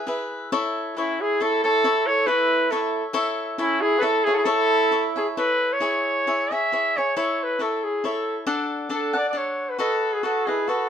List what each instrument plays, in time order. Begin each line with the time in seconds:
0.07 cavaquinho E4 G#4 B4 E5
0.52 cavaquinho E4 A4 C#5 E5
0.97 trumpet C#4 E4, cavaquinho E4 A4 C#5 E5
1.20 trumpet E4 G#4
1.40 cavaquinho E4 A4 C#5 E5, trumpet E4 A4
1.64 trumpet E4 A4, cavaquinho A4 C#5 E5
1.84 cavaquinho E4 A4 C#5 E5
2.07 trumpet A4 C#5
2.27 cavaquinho E4 A4 C#5 E5, trumpet E4 B4
2.71 cavaquinho E4 A4 C#5 E5, trumpet E4 A4
3.13 cavaquinho E4 A4 C#5 E5
3.58 trumpet C#4 E4, cavaquinho E4 A4 C#5 E5
3.81 trumpet E4 G#4
3.99 cavaquinho E4 A4 C#5, trumpet E4 G#4 A4 B4
4.03 cavaquinho E5
4.24 trumpet E4 G#4, cavaquinho A4 C#5 E5
4.31 trumpet F#4 A4
4.35 trumpet E4 G#4
4.43 trumpet E4 A4, cavaquinho E4 A4 C#5 E5
4.92 cavaquinho E4 A4 C#5 E5
5.16 trumpet G#4, cavaquinho A4 C#5 E5
5.37 cavaquinho E4 A4 C#5 E5, trumpet B4
5.73 trumpet C#5
5.80 cavaquinho E4 G#4 C#5 E5
6.27 cavaquinho E4 G#4 C#5 E5
6.51 cavaquinho G#4 C#5 E5, trumpet E5
6.72 cavaquinho E4 G#4 C#5 E5
6.97 cavaquinho G#4 C#5 E5, trumpet C#5
7.16 cavaquinho E4 A4 C#5 E5, trumpet C#5
7.43 trumpet B4
7.59 cavaquinho E4 A4 C#5 E5, trumpet A4
7.84 trumpet G#4
8.04 cavaquinho E4 A4 C#5 E5, trumpet A4
8.46 cavaquinho D4 A4 D5 F#5
8.89 cavaquinho D4 A4 D5 F#5
8.94 trumpet A4
9.13 cavaquinho A4 D5 F#5
9.17 trumpet D5
9.29 cavaquinho D4, trumpet D5
9.34 cavaquinho A4 F#5, trumpet C#5
9.70 trumpet B4
9.79 cavaquinho F#4 A4 B4 D#5, trumpet A4
10.13 trumpet G#4
10.23 cavaquinho F#4 A4 B4 D#5, trumpet F#4 A4
10.46 trumpet E4 G#4, cavaquinho A4 B4 D#5
10.67 cavaquinho F#4 A4 B4 D#5, trumpet F#4 A4